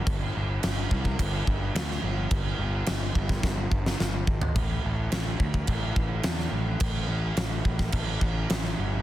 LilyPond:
<<
  \new Staff \with { instrumentName = "Picked electric bass" } { \clef bass \time 4/4 \key a \minor \tempo 4 = 106 g,,8 g,,8 g,,8 c,8 g,,8 g,,8 d,8 g,,8 | g,,8 g,,8 g,,8 g,,8 g,,8 g,,8 g,,8 gis,,8 | a,,8 a,,8 a,,8 d,8 a,,8 a,,8 e,8 a,,8 | a,,8 a,,8 a,,8 a,,8 a,,8 a,,8 a,,8 g,,8 | }
  \new DrumStaff \with { instrumentName = "Drums" } \drummode { \time 4/4 <cymc bd>4 <cymc sn>8 bd16 bd16 <cymc bd>8 bd8 <cymc sn>16 sn8. | <cymc bd>4 <cymc sn>8 bd16 <bd sn>16 <bd sn>8 bd16 sn16 sn8 bd16 tomfh16 | <cymc bd>4 <cymc sn>8 bd16 bd16 <cymc bd>8 bd8 <cymc sn>16 sn8. | <cymc bd>4 <cymc sn>8 bd16 <bd sn>16 <cymc bd>8 bd8 <cymc sn>16 sn8. | }
>>